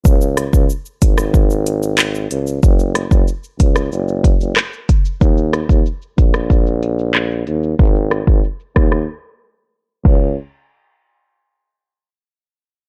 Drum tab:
CC |----------------|----------------|----------------|--------------x-|
HH |--x---x---x---x-|--x---x---x---x-|--x---x---x---x-|--x---x---------|
SH |xxxxxxxxxxxxxxxx|xxxxxxxxxxxxxxxx|xxxxxxxxxxxxxxxx|xxxxxxxx--------|
CP |------------x---|------------x---|------------x---|----------------|
SD |--r----r----r---|--r----r----r---|--r----r----r---|--r---rr--------|
BD |o--o--o-o-------|o--o--o---o---o-|o--o--o-o-------|o--o--o-------o-|

CC |----------------|
HH |----------------|
SH |----------------|
CP |----------------|
SD |----------------|
BD |----------------|